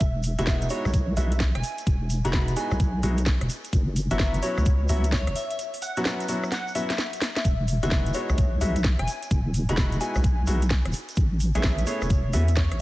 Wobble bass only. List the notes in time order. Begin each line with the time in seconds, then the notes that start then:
0.01 E1
0.39 E1
0.85 B1
1.17 B1
1.55 E1
1.87 E1
2.25 E1
2.71 B1
3.03 B1
3.41 E1
3.73 F#1
4.11 F#1
4.58 C#2
4.89 C#2
5.27 F#1
7.45 E1
7.83 E1
8.30 B1
8.61 B1
8.99 E1
9.31 E1
9.69 E1
10.16 B1
10.47 B1
10.85 E1
11.17 A1
11.55 A1
12.02 E1
12.33 E2
12.71 A1